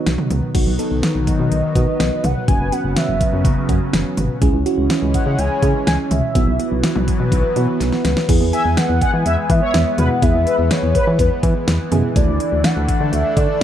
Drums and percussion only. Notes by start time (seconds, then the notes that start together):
0.06 snare, closed hi-hat
0.18 mid tom
0.30 closed hi-hat, mid tom
0.55 kick, closed hi-hat, crash
0.79 closed hi-hat
1.03 snare, closed hi-hat
1.27 kick, closed hi-hat
1.52 closed hi-hat
1.75 kick, closed hi-hat
2.00 snare, closed hi-hat
2.24 closed hi-hat, mid tom
2.48 kick, closed hi-hat
2.72 closed hi-hat
2.96 snare, closed hi-hat
3.21 kick, closed hi-hat
3.45 kick, closed hi-hat
3.69 kick, closed hi-hat
3.93 snare, closed hi-hat
4.17 closed hi-hat, mid tom
4.42 kick, closed hi-hat
4.66 closed hi-hat
4.90 snare, closed hi-hat
5.14 kick, closed hi-hat
5.39 closed hi-hat
5.62 kick, closed hi-hat
5.87 snare, closed hi-hat
6.11 closed hi-hat, mid tom
6.35 kick, closed hi-hat
6.60 closed hi-hat
6.83 snare, closed hi-hat
6.96 mid tom
7.08 kick, closed hi-hat
7.32 kick, closed hi-hat
7.56 closed hi-hat
7.80 snare, closed hi-hat
7.92 snare
8.05 snare, closed hi-hat
8.17 snare
8.29 kick, closed hi-hat, crash
8.53 closed hi-hat
8.77 snare, closed hi-hat
9.01 kick, closed hi-hat
9.26 closed hi-hat
9.50 kick, closed hi-hat
9.74 snare, closed hi-hat
9.98 closed hi-hat, mid tom
10.22 kick, closed hi-hat
10.47 closed hi-hat
10.71 snare, closed hi-hat
10.95 kick, closed hi-hat
11.19 kick, closed hi-hat
11.43 kick, closed hi-hat
11.68 snare, closed hi-hat
11.92 closed hi-hat, mid tom
12.16 kick, closed hi-hat
12.40 closed hi-hat
12.64 snare, closed hi-hat
12.88 kick, closed hi-hat
13.13 closed hi-hat
13.37 kick, closed hi-hat